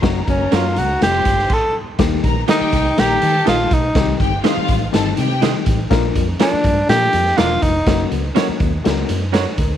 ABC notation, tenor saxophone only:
X:1
M:4/4
L:1/8
Q:1/4=123
K:Eblyd
V:1 name="Tenor saxophone"
z _D F _G =G2 A z | z2 E2 G2 F E- | E z6 z | z2 D2 G2 F E- |
E z6 z |]